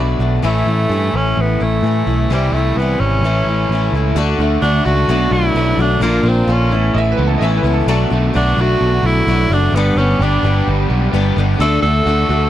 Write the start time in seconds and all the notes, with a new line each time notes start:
Already playing: B1 B2 F#3 B3 D4 F#4 D5 B5
0.00 A3 D4 F#4
0.19 B1 A3 D4 F#4
0.42 A1 A2 E3 A3 C#4 E4
0.47 A3
0.66 A1 C#4 E4
0.70 A3
0.89 G2 E3 A3 C#4 E4
1.14 A1 C#4
1.37 A1 B3
1.60 A1 A3 C#4 E4
1.83 A2 E3 A3 C#4
1.87 E4
2.07 B1 A3 C#4 E4
2.29 C2 C3 E3 G3 C4 E4
2.34 G3
2.52 C2 A3
2.56 G3 C4 E4
2.76 C2 E3 B3
2.80 G3 C4 E4
3.00 G#1 C#4
3.21 A1 A2 E3
3.25 A3 C#4 E4
3.45 A1 E4
3.50 A3 C#4
3.69 A1 E3 A3
3.74 C#4 E4
3.92 C#2 E4
3.97 A3 C#4
4.15 D2 D3 A3 D4 F#4 A4
4.39 D2 D4 F#4
4.43 A3
4.62 D2 D3 A3 D4 F#4
4.85 C#2 A3 D4 F#4
5.08 B1 B2 F#3 A3 B3 D4 F#4
5.12 A4
5.31 B1 A3 E4
5.55 B1 F#3 A3 D4 F#4
5.78 B1 A3 D4 F#4
6.00 A#1 A#2 D3 A#3 D4 F4
6.05 A#3 D4 F4 A#4
6.23 A#1 A#3 D4 F4
6.28 C4
6.47 A#1 D3 A#3 D4 F4
6.53 C#4
6.70 A1 A2 B3 C#4 E4 A4
6.94 A1 E3 D#5 E5
7.12 B4
7.17 C#2 B3
7.27 A4
7.38 A1 E3 D#5
7.42 B3 C#4 E4 E5
7.57 B4
7.63 C#2 B3 C#4 E4
7.74 A4
7.86 B1 B2 F#3 A3 D4 F#4 A4
7.90 B3 F#4 A4
8.10 B1 A3 D4 F#4
8.34 B1 F#3 A3 D4 F#4
8.57 B1 D4 F#4
8.61 A3
8.81 B1 F#3
9.03 B1 A3 E4
9.27 B1 F#3 A3 D4 F#4
9.50 F#1 D4 F#4
9.55 A3
9.72 G1 G2 D3 B3 D4 G4 B4
9.77 G3 B3 D4 G4
9.96 G1 B3 C#4 D4 G4
10.00 G3
10.19 G1 G3 B3 D4
10.24 D4 G4
10.43 G1 G3 B3 D4 G4
10.68 G1 G3
10.90 B1 B3
11.13 G1 G3 B3 D4 G4
11.37 G1 G3 B3 D4 G4
11.58 D2 D3 A3 D4 F#4 A4
11.82 D2 A3 D4 F#4 A4
11.86 A3
12.06 D2 D3 A3 D4 F#4
12.29 D2 A3 D4 F#4